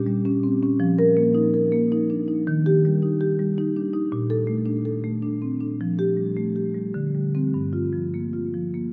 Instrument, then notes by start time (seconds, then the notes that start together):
marimba
Already playing: A#2 G4
0.07 G3
0.25 C#4
0.43 C4
0.63 C#4
0.80 F3
0.99 A#4
1.17 A#3
1.35 D#4
1.54 A#4
1.72 A#3
1.92 D#4
2.10 D4
2.28 D#4
2.47 D#3
2.66 G4
2.85 G3
3.02 D#4
3.21 G4
3.39 G3
3.58 D#4
3.76 D4
3.93 D#4
4.12 A#2
4.30 A4
4.47 A3
4.66 D4
4.85 A4
5.04 A3
5.22 D4
5.42 C4
5.60 D4
5.81 F3
5.99 G4
6.17 G3
6.37 A3
6.56 G4
6.74 G3
6.94 D3
7.15 G3
7.35 G3 C4
7.54 G2
7.73 F4
7.93 F3
8.14 A#3
8.33 F4
8.54 F3
8.74 A#3